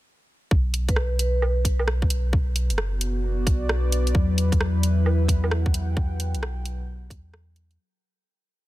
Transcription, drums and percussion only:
0.51 kick loud
0.74 closed hi-hat medium
0.89 kick loud
0.89 closed hi-hat soft
0.96 cross-stick loud
1.19 closed hi-hat medium
1.42 low woodblock soft
1.65 kick medium
1.65 closed hi-hat medium
1.79 low woodblock soft
1.88 cross-stick loud
2.02 kick loud
2.10 closed hi-hat medium
2.33 kick loud
2.56 closed hi-hat medium
2.70 closed hi-hat soft
2.78 cross-stick loud
3.01 closed hi-hat medium
3.47 kick loud
3.47 closed hi-hat medium
3.69 cross-stick loud
3.92 closed hi-hat medium
4.07 closed hi-hat soft
4.15 kick loud
4.38 closed hi-hat medium
4.52 kick loud
4.52 closed hi-hat soft
4.61 cross-stick loud
4.83 closed hi-hat medium
5.06 low woodblock soft
5.28 kick medium
5.28 closed hi-hat medium
5.44 low woodblock soft
5.51 cross-stick loud
5.66 kick loud
5.74 closed hi-hat medium
5.97 kick loud
6.20 closed hi-hat medium
6.35 closed hi-hat soft
6.43 cross-stick loud
6.66 closed hi-hat medium
7.10 kick loud
7.10 closed hi-hat medium
7.34 cross-stick loud
7.56 closed hi-hat medium
7.71 closed hi-hat soft

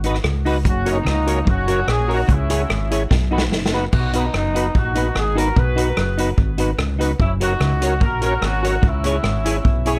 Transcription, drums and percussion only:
0.04 closed hi-hat medium
0.14 cross-stick medium
0.24 cross-stick loud
0.46 open hi-hat soft
0.65 kick loud
0.65 hi-hat pedal medium
0.86 closed hi-hat medium
1.06 cross-stick loud
1.27 closed hi-hat loud
1.47 kick loud
1.68 closed hi-hat medium
1.88 cross-stick loud
2.11 open hi-hat medium
2.29 kick loud
2.29 hi-hat pedal medium
2.50 closed hi-hat loud
2.70 cross-stick loud
2.91 closed hi-hat loud
3.11 kick loud
3.11 snare medium
3.38 snare medium
3.52 snare medium
3.66 snare medium
3.93 kick loud
3.93 crash medium
4.13 closed hi-hat medium
4.34 cross-stick loud
4.56 closed hi-hat medium
4.75 kick loud
4.95 closed hi-hat medium
5.16 cross-stick loud
5.38 closed hi-hat medium
5.56 kick loud
5.78 closed hi-hat medium
5.97 cross-stick loud
6.18 closed hi-hat loud
6.38 kick loud
6.58 closed hi-hat medium
6.79 cross-stick loud
7.01 closed hi-hat medium
7.20 kick loud
7.41 closed hi-hat medium
7.61 cross-stick loud
7.82 closed hi-hat loud
8.01 kick loud
8.22 closed hi-hat medium
8.42 cross-stick loud
8.64 closed hi-hat medium
8.83 kick loud
9.04 closed hi-hat medium
9.24 cross-stick loud
9.46 closed hi-hat loud
9.65 kick loud
9.86 closed hi-hat medium

